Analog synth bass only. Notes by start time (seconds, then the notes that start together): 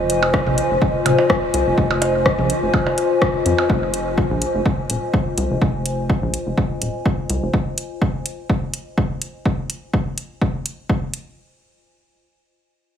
Already playing: F1
0.46 A#1
0.71 F1
1.06 D#1
1.54 C2
1.67 F1
1.78 F1
2.39 A#1
2.62 F1
3.46 F2
3.70 F1
4.31 A#1
4.54 F1
4.90 D#1
5.38 C2
5.50 F1
5.62 F1
6.22 A#1
6.46 F1
6.82 D#1
7.30 C2
7.42 F1